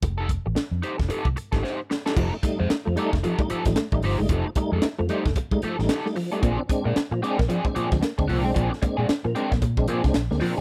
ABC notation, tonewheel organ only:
X:1
M:4/4
L:1/16
Q:"Swing 16ths" 1/4=113
K:Fmix
V:1 name="Tonewheel organ"
z16 | F, [A,E] [G,A,E] z [A,E] F, [G,A,E] z2 [G,A,E] F, [G,A,E] z [G,A,E] F, [G,A,E] | F, [A,E] [G,A,E] z [A,E] F, [G,A,E] z2 [G,A,E] F, [G,A,E] z [G,A,E] F, [G,A,E] | [B,,F,] [CD] [_A,CD] z [CD] [B,,F,] [A,CD] z2 [A,CD] [B,,F,] [A,CD] z [A,CD] [B,,F,] [A,CD] |
[B,,F,] [CD] [_A,CD] z [CD] [B,,F,] [A,CD] z2 [A,CD] [B,,F,] [A,CD] z [A,CD] [B,,F,] [A,CD] |]